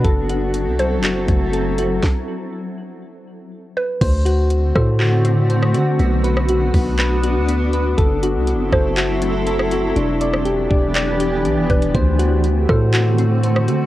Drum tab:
CC |----------------|----------------|x---------------|----------------|
HH |x-x-x-x-x-x-x-x-|----------------|x-x-x---x-x-x-x-|x-x-x-o-x-x-x-x-|
CP |--------x-------|----------------|--------x-------|--------x-------|
SD |----------------|o---------------|------r------r--|---r------------|
BD |o---------o-----|o---------------|o-----o---------|------o---------|

CC |----------------|----------------|----------------|
HH |x-x-x---x-x-x-x-|x-x-x---x-x-x-xx|x-x-x---x-x-x-x-|
CP |--------x-------|--------x-------|--------x-------|
SD |------r------r--|---r------------|------r------r--|
BD |o-----o---------|------o-------o-|o-----o---------|